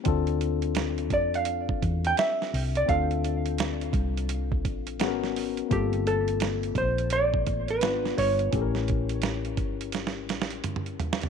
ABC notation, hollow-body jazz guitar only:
X:1
M:4/4
L:1/16
Q:"Swing 16ths" 1/4=85
K:Dm
V:1 name="Hollow-body jazz guitar"
z6 d f4 g e3 d | f12- f2 z2 | G2 A4 c2 d3 =B3 ^c2- | ^c12 z4 |]